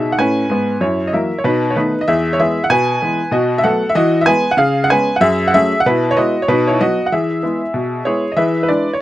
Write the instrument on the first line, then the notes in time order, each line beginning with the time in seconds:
upright piano
Already playing: B2 D#4 G#4 E5
0.12 F#5
0.18 A2 C#4 B4 G#5
0.50 G#2 B3
0.81 F#2 E4 C#5
1.07 D#5
1.13 E3 F#3 A#3 A#4 E5
1.38 C#5
1.44 B2 D#4 B4
1.70 C#5
1.76 D#3 A3 B3 D#4 B4
2.01 D#5
2.08 E2 G#4 E5
2.33 C#5
2.39 E3 G#3 B3 G#4 E5
2.64 F#5
2.70 B2 B4 G#5
3.02 E3 G#3 B3
3.31 B2 F#4 D#5
3.58 E5
3.64 F#3 A3 B3 A4 F#5
3.89 E5
3.95 E3 F#4 D#5
4.21 E5
4.26 G#3 B3 B4 G#5
4.51 F#5
4.57 C#3 G#4 F5
4.84 F#5
4.90 G#3 B3 C#4 B4 G#5
5.16 F#5
5.21 F#2 G#4 E5
5.48 F#5
5.54 F#3 A3 C#4 G#4 E5
5.80 F#5
5.86 B2 E4 B4
6.11 C#5
6.16 G#3 B3 E4 F#4 D#5
6.42 C#5
6.48 B2 D#4 B4
6.67 E4 C#5
6.80 F#3 B3 F#4 D#5
7.06 F#5
7.12 E3 G#4 E5
7.43 G#3 B3 E4
7.74 B2
8.05 G#3 B3 E4 G#4 C#5
8.32 D#5
8.36 E3 G#4 B4 E5
8.63 B4
8.68 G#3 D4 E4 B4 D5
8.93 C#5